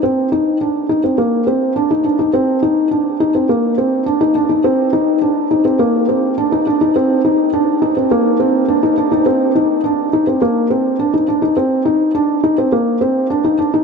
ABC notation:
X:1
M:4/4
L:1/16
Q:1/4=104
K:Eb
V:1 name="Felt piano"
C2 E2 D2 E C B,2 C2 D E D E | C2 E2 D2 E C B,2 C2 D E D E | C2 E2 D2 E C B,2 C2 D E D E | C2 E2 D2 E C B,2 C2 D E D E |
C2 E2 D2 E C B,2 C2 D E D E | C2 E2 D2 E C B,2 C2 D E D E |]